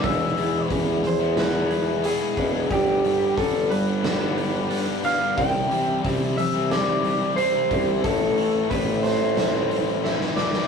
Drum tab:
HH |o-o-o-o-o-o-o-o-|o-o-o-o-o-o-o-o-|o-o-o-o-o-o-o-o-|o-o-o-o-o-o-----|
SD |--------o-------|--------o-----o-|--------o-------|------o-o---oooo|
BD |o---o---------o-|o---o-----------|o---o---------o-|o---o-----------|